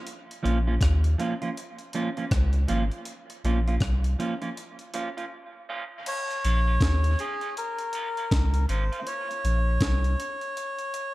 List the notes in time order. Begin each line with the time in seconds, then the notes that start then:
0.07 closed hi-hat
0.31 closed hi-hat
0.43 A#1 F3 A#3 C#4 F4, closed hi-hat
0.67 F3 A#3 C#4 F4
0.81 D#2, kick, cross-stick, closed hi-hat
1.04 closed hi-hat
1.18 F3 A#3 C#4 F4, closed hi-hat
1.42 F3 A#3 C#4 F4, closed hi-hat
1.57 closed hi-hat
1.79 closed hi-hat
1.93 F3 A#3 C#4 F4, closed hi-hat
2.17 F3 A#3 C#4 F4, closed hi-hat
2.31 C#2, kick, cross-stick, closed hi-hat
2.53 closed hi-hat
2.68 G#1 F3 A#3 C#4 F4, closed hi-hat
2.92 closed hi-hat
3.05 closed hi-hat
3.30 closed hi-hat
3.44 A#1 F3 A#3 C#4 F4, closed hi-hat
3.68 F3 A#3 C#4 F4, closed hi-hat
3.80 C2, kick, cross-stick, closed hi-hat
4.04 closed hi-hat
4.19 F3 A#3 C#4 F4, closed hi-hat
4.42 F3 A#3 C#4 F4, closed hi-hat
4.57 closed hi-hat
4.79 closed hi-hat
4.94 F3 A#3 C#4 F4, closed hi-hat
5.17 F3 A#3 C#4 F4, closed hi-hat
5.69 F3 A#3 C#4 F4
6.06 C#5, closed hi-hat, crash
6.31 closed hi-hat
6.44 A#1 F3 A#3 C#4 F4, closed hi-hat
6.67 F3 A#3 C#4 F4
6.81 D#2, kick, snare, closed hi-hat
7.04 closed hi-hat
7.19 F3 A#3 C#4 F4 G#4, closed hi-hat
7.41 F3 A#3 C#4 F4, closed hi-hat
7.57 A#4, closed hi-hat
7.78 closed hi-hat
7.93 F3 A#3 C#4 F4, closed hi-hat
8.17 F3 A#3 C#4 F4, closed hi-hat
8.31 C#2, kick, snare, closed hi-hat
8.54 closed hi-hat
8.69 G#1 F3 A#3 C#4 F4 C5, closed hi-hat
8.92 F3 A#3 C#4 F4, closed hi-hat
9.07 C#5, closed hi-hat
9.31 closed hi-hat
9.44 A#1, closed hi-hat
9.81 C2, kick, snare, closed hi-hat
10.04 closed hi-hat
10.20 closed hi-hat
10.41 closed hi-hat
10.57 closed hi-hat
10.79 closed hi-hat
10.94 closed hi-hat